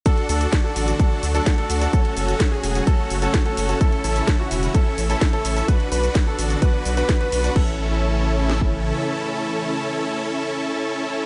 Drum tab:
CC |----------------|----------------|----------------|----------------|
HH |xxoxx-oxx-oxxxox|xxoxx-oxx-oxxxox|xxoxx-oxx-oxxxox|xxoxx-oxx-oxxxox|
SH |x-xxx-xxx-xxx-xx|x-xxx-xxx-xxx-xx|x-xxx-xxx-xxx-xx|x-xxx-xxx-xxx-xx|
SD |----o-------o---|----o-------o---|----o-------o---|----o-------o---|
BD |o---o---o---o---|o---o---o---o---|o---o---o---o---|o---o---o---o---|

CC |x---------------|----------------|
HH |----------------|----------------|
SH |----------------|----------------|
SD |--------o-------|----------------|
BD |o--------o------|----------------|